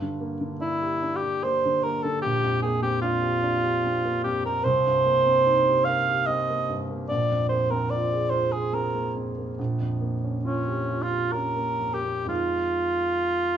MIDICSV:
0, 0, Header, 1, 3, 480
1, 0, Start_track
1, 0, Tempo, 808625
1, 1325, Time_signature, 3, 2, 24, 8
1, 3237, Tempo, 820793
1, 5157, Tempo, 865801
1, 6597, Tempo, 966184
1, 7077, Tempo, 1027397
1, 7670, End_track
2, 0, Start_track
2, 0, Title_t, "Cor anglais"
2, 0, Program_c, 0, 69
2, 364, Note_on_c, 0, 64, 66
2, 690, Note_on_c, 0, 67, 70
2, 699, Note_off_c, 0, 64, 0
2, 852, Note_on_c, 0, 72, 82
2, 861, Note_off_c, 0, 67, 0
2, 1088, Note_on_c, 0, 70, 66
2, 1097, Note_off_c, 0, 72, 0
2, 1206, Note_on_c, 0, 69, 66
2, 1214, Note_off_c, 0, 70, 0
2, 1315, Note_off_c, 0, 69, 0
2, 1318, Note_on_c, 0, 67, 80
2, 1550, Note_off_c, 0, 67, 0
2, 1556, Note_on_c, 0, 68, 68
2, 1671, Note_off_c, 0, 68, 0
2, 1678, Note_on_c, 0, 67, 71
2, 1787, Note_off_c, 0, 67, 0
2, 1791, Note_on_c, 0, 65, 75
2, 2505, Note_off_c, 0, 65, 0
2, 2516, Note_on_c, 0, 67, 67
2, 2636, Note_off_c, 0, 67, 0
2, 2646, Note_on_c, 0, 70, 71
2, 2754, Note_on_c, 0, 72, 88
2, 2763, Note_off_c, 0, 70, 0
2, 3466, Note_on_c, 0, 77, 81
2, 3475, Note_off_c, 0, 72, 0
2, 3710, Note_on_c, 0, 75, 69
2, 3719, Note_off_c, 0, 77, 0
2, 4038, Note_off_c, 0, 75, 0
2, 4191, Note_on_c, 0, 74, 78
2, 4416, Note_off_c, 0, 74, 0
2, 4428, Note_on_c, 0, 72, 69
2, 4553, Note_on_c, 0, 70, 65
2, 4562, Note_off_c, 0, 72, 0
2, 4671, Note_on_c, 0, 74, 73
2, 4679, Note_off_c, 0, 70, 0
2, 4903, Note_on_c, 0, 72, 70
2, 4912, Note_off_c, 0, 74, 0
2, 5030, Note_on_c, 0, 68, 63
2, 5039, Note_off_c, 0, 72, 0
2, 5160, Note_on_c, 0, 70, 60
2, 5169, Note_off_c, 0, 68, 0
2, 5395, Note_off_c, 0, 70, 0
2, 6109, Note_on_c, 0, 61, 60
2, 6427, Note_on_c, 0, 65, 60
2, 6435, Note_off_c, 0, 61, 0
2, 6591, Note_on_c, 0, 70, 68
2, 6599, Note_off_c, 0, 65, 0
2, 6899, Note_on_c, 0, 67, 57
2, 6907, Note_off_c, 0, 70, 0
2, 7068, Note_off_c, 0, 67, 0
2, 7071, Note_on_c, 0, 65, 65
2, 7670, Note_off_c, 0, 65, 0
2, 7670, End_track
3, 0, Start_track
3, 0, Title_t, "Grand piano"
3, 0, Program_c, 1, 0
3, 0, Control_c, 1, 64, 127
3, 0, Note_on_c, 1, 43, 51
3, 11, Note_on_c, 1, 50, 43
3, 123, Note_on_c, 1, 58, 44
3, 199, Note_off_c, 1, 50, 0
3, 242, Note_on_c, 1, 50, 41
3, 314, Note_off_c, 1, 58, 0
3, 358, Note_on_c, 1, 62, 44
3, 434, Note_off_c, 1, 50, 0
3, 487, Note_on_c, 1, 67, 46
3, 553, Note_off_c, 1, 62, 0
3, 608, Note_on_c, 1, 62, 44
3, 680, Note_off_c, 1, 67, 0
3, 733, Note_on_c, 1, 67, 42
3, 801, Note_off_c, 1, 62, 0
3, 859, Note_on_c, 1, 58, 43
3, 925, Note_off_c, 1, 67, 0
3, 982, Note_on_c, 1, 50, 41
3, 1047, Note_off_c, 1, 58, 0
3, 1104, Note_on_c, 1, 58, 41
3, 1167, Note_off_c, 1, 50, 0
3, 1217, Note_on_c, 1, 50, 42
3, 1285, Note_off_c, 1, 58, 0
3, 1306, Note_off_c, 1, 43, 0
3, 1330, Note_off_c, 1, 50, 0
3, 1333, Control_c, 1, 64, 0
3, 1333, Note_on_c, 1, 34, 55
3, 1426, Control_c, 1, 64, 127
3, 1448, Note_on_c, 1, 41, 43
3, 1563, Note_on_c, 1, 58, 45
3, 1631, Note_off_c, 1, 41, 0
3, 1681, Note_on_c, 1, 60, 44
3, 1747, Note_off_c, 1, 58, 0
3, 1800, Note_on_c, 1, 62, 42
3, 1866, Note_off_c, 1, 60, 0
3, 1913, Note_on_c, 1, 67, 45
3, 1986, Note_off_c, 1, 62, 0
3, 2036, Note_on_c, 1, 62, 46
3, 2105, Note_off_c, 1, 67, 0
3, 2160, Note_on_c, 1, 67, 45
3, 2229, Note_off_c, 1, 62, 0
3, 2286, Note_on_c, 1, 60, 44
3, 2353, Note_off_c, 1, 67, 0
3, 2402, Note_on_c, 1, 58, 44
3, 2477, Note_off_c, 1, 60, 0
3, 2522, Note_on_c, 1, 41, 40
3, 2594, Note_off_c, 1, 58, 0
3, 2647, Note_on_c, 1, 58, 41
3, 2713, Note_off_c, 1, 41, 0
3, 2739, Note_off_c, 1, 34, 0
3, 2761, Note_on_c, 1, 36, 58
3, 2762, Note_off_c, 1, 58, 0
3, 2770, Control_c, 1, 64, 0
3, 2871, Control_c, 1, 64, 127
3, 2888, Note_on_c, 1, 43, 41
3, 3002, Note_on_c, 1, 58, 44
3, 3072, Note_off_c, 1, 43, 0
3, 3125, Note_on_c, 1, 60, 41
3, 3190, Note_off_c, 1, 58, 0
3, 3242, Note_on_c, 1, 63, 44
3, 3312, Note_off_c, 1, 60, 0
3, 3369, Note_on_c, 1, 67, 45
3, 3430, Note_off_c, 1, 63, 0
3, 3486, Note_on_c, 1, 70, 48
3, 3553, Note_off_c, 1, 67, 0
3, 3610, Note_on_c, 1, 67, 44
3, 3672, Note_off_c, 1, 70, 0
3, 3723, Note_on_c, 1, 60, 43
3, 3795, Note_off_c, 1, 67, 0
3, 3849, Note_on_c, 1, 58, 40
3, 3912, Note_off_c, 1, 60, 0
3, 3962, Note_on_c, 1, 43, 37
3, 4035, Note_off_c, 1, 58, 0
3, 4083, Note_on_c, 1, 58, 38
3, 4152, Note_off_c, 1, 43, 0
3, 4174, Note_off_c, 1, 36, 0
3, 4200, Note_off_c, 1, 58, 0
3, 4205, Note_on_c, 1, 34, 53
3, 4206, Control_c, 1, 64, 0
3, 4293, Control_c, 1, 64, 127
3, 4320, Note_on_c, 1, 41, 40
3, 4440, Note_on_c, 1, 58, 42
3, 4508, Note_off_c, 1, 41, 0
3, 4561, Note_on_c, 1, 60, 43
3, 4627, Note_off_c, 1, 58, 0
3, 4682, Note_on_c, 1, 65, 42
3, 4747, Note_off_c, 1, 60, 0
3, 4801, Note_on_c, 1, 68, 43
3, 4867, Note_off_c, 1, 65, 0
3, 4909, Note_on_c, 1, 65, 44
3, 4988, Note_off_c, 1, 68, 0
3, 5030, Note_on_c, 1, 68, 43
3, 5104, Note_off_c, 1, 65, 0
3, 5153, Note_on_c, 1, 60, 40
3, 5225, Note_off_c, 1, 68, 0
3, 5272, Note_on_c, 1, 58, 37
3, 5344, Note_off_c, 1, 60, 0
3, 5391, Note_on_c, 1, 41, 34
3, 5463, Note_off_c, 1, 58, 0
3, 5516, Note_on_c, 1, 58, 38
3, 5582, Note_off_c, 1, 41, 0
3, 5611, Note_off_c, 1, 34, 0
3, 5630, Note_on_c, 1, 34, 51
3, 5631, Note_off_c, 1, 58, 0
3, 5639, Control_c, 1, 64, 0
3, 5730, Control_c, 1, 64, 127
3, 5749, Note_on_c, 1, 41, 35
3, 5864, Note_on_c, 1, 58, 38
3, 5939, Note_off_c, 1, 41, 0
3, 5991, Note_on_c, 1, 61, 37
3, 6057, Note_off_c, 1, 58, 0
3, 6107, Note_on_c, 1, 65, 37
3, 6182, Note_off_c, 1, 61, 0
3, 6233, Note_on_c, 1, 67, 40
3, 6300, Note_off_c, 1, 65, 0
3, 6351, Note_on_c, 1, 65, 38
3, 6425, Note_off_c, 1, 67, 0
3, 6477, Note_on_c, 1, 67, 34
3, 6546, Note_off_c, 1, 65, 0
3, 6603, Note_on_c, 1, 61, 36
3, 6665, Note_off_c, 1, 67, 0
3, 6712, Note_on_c, 1, 58, 35
3, 6782, Note_off_c, 1, 61, 0
3, 6827, Note_on_c, 1, 41, 30
3, 6900, Note_off_c, 1, 58, 0
3, 6950, Note_on_c, 1, 58, 31
3, 7024, Note_off_c, 1, 41, 0
3, 7050, Note_on_c, 1, 41, 43
3, 7055, Note_off_c, 1, 34, 0
3, 7056, Note_on_c, 1, 56, 29
3, 7063, Note_on_c, 1, 63, 31
3, 7065, Note_on_c, 1, 65, 31
3, 7075, Note_off_c, 1, 58, 0
3, 7083, Control_c, 1, 64, 0
3, 7195, Control_c, 1, 64, 127
3, 7670, Note_off_c, 1, 41, 0
3, 7670, Note_off_c, 1, 56, 0
3, 7670, Note_off_c, 1, 63, 0
3, 7670, Note_off_c, 1, 65, 0
3, 7670, End_track
0, 0, End_of_file